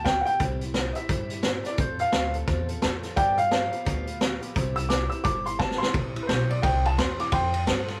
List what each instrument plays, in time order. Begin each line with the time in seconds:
Already playing: upright bass D2
0.05 steel-string acoustic guitar F3 B3, upright piano G5, kick, snare, closed hi-hat
0.09 steel-string acoustic guitar F4 G4
0.21 upright piano F#5
0.26 steel-string acoustic guitar F4 G4, upright piano G5, closed hi-hat
0.30 steel-string acoustic guitar F3 B3
0.39 upright bass C2, steel-string acoustic guitar C3 G3 C4 E4 G4, kick, closed hi-hat
0.61 steel-string acoustic guitar C4 E4 G4, closed hi-hat
0.74 steel-string acoustic guitar G3 C4 E4, snare, closed hi-hat
0.78 steel-string acoustic guitar G4
0.93 upright piano D#5 E5, closed hi-hat
0.97 steel-string acoustic guitar C4 E4 G4
1.09 upright bass G2, steel-string acoustic guitar C3 G3 C4 E4 G4, kick, closed hi-hat
1.30 steel-string acoustic guitar C4 E4 G4, closed hi-hat
1.43 steel-string acoustic guitar G3 C4 E4, snare, closed hi-hat
1.47 steel-string acoustic guitar G4
1.65 steel-string acoustic guitar E4 G4, upright piano D5, snare, closed hi-hat
1.69 steel-string acoustic guitar C4
1.78 upright bass F2, steel-string acoustic guitar F3 C4 F4 A4, upright piano C5, kick, closed hi-hat
1.99 steel-string acoustic guitar C4 F4 A4, upright piano F5, closed hi-hat
2.12 upright bass D2, steel-string acoustic guitar F3 C4 F4, snare, closed hi-hat
2.34 steel-string acoustic guitar C4 F4 A4, closed hi-hat
2.47 upright bass E2, steel-string acoustic guitar F3 C4 F4 A4, kick, snare, closed hi-hat
2.68 steel-string acoustic guitar C4 F4 A4, closed hi-hat
2.82 upright bass F2, steel-string acoustic guitar F3 C4 F4 A4, snare, closed hi-hat
3.03 steel-string acoustic guitar C4 F4 A4, snare, closed hi-hat
3.16 upright bass G2, steel-string acoustic guitar G2 D3 F3 B3 F4 G4, upright piano D5 G5, kick, closed hi-hat
3.38 steel-string acoustic guitar F3 B3 F4 G4, upright piano F5, closed hi-hat
3.51 steel-string acoustic guitar F3 B3 F4 G4, snare, closed hi-hat
3.72 steel-string acoustic guitar F3 B3 F4 G4, closed hi-hat
3.85 upright bass D2, steel-string acoustic guitar G2 D3 F3 B3 F4 G4, kick, closed hi-hat
4.06 steel-string acoustic guitar F3 B3 F4 G4, closed hi-hat
4.20 steel-string acoustic guitar F3 B3 F4 G4, snare, closed hi-hat
4.41 steel-string acoustic guitar F3 B3 F4 G4, closed hi-hat
4.55 upright bass C2, steel-string acoustic guitar C3 G3 C4 E4 G4, kick, closed hi-hat
4.76 steel-string acoustic guitar C4 E4 G4, upright piano E6, closed hi-hat
4.89 steel-string acoustic guitar G3 C4 E4 G4, upright piano D6, snare, closed hi-hat
5.09 steel-string acoustic guitar C4 E4 G4, upright piano E6, closed hi-hat
5.24 upright bass G1, steel-string acoustic guitar C3 G3 C4 E4 G4, upright piano D6, kick, closed hi-hat
5.45 steel-string acoustic guitar C4 E4 G4, upright piano C6, closed hi-hat
5.59 steel-string acoustic guitar G3 C4 E4 G4, upright piano A5, kick, snare
5.71 snare
5.78 steel-string acoustic guitar G4, upright piano C6
5.82 steel-string acoustic guitar C4 E4, snare
5.94 upright bass C2, steel-string acoustic guitar C3 G3 C4 E4 G4, kick, ride
6.16 steel-string acoustic guitar C4 E4 G4, muted upright bass stroke, ride
6.23 upright piano B4
6.27 upright bass B1, steel-string acoustic guitar G3 C4 E4 G4, upright piano C5, snare, ride
6.49 steel-string acoustic guitar C4 E4 G4, upright piano D5, ride
6.62 upright bass C2, steel-string acoustic guitar C3 G3 C4 E4 G4, upright piano G5, kick, snare, ride
6.85 steel-string acoustic guitar C4 E4 G4, upright piano A5, ride
6.98 upright bass E2, steel-string acoustic guitar G3 C4 E4 G4, upright piano C6, snare, ride
7.19 steel-string acoustic guitar C4 E4 G4, upright piano D6, snare, ride
7.32 upright bass F2, steel-string acoustic guitar F3 C4 F4 A4, upright piano G5 C6, kick, ride
7.52 steel-string acoustic guitar C4 F4 A4, ride
7.66 upright bass G2, steel-string acoustic guitar F3 C4 F4 A4, snare, ride
7.87 steel-string acoustic guitar C4 F4 A4, snare, ride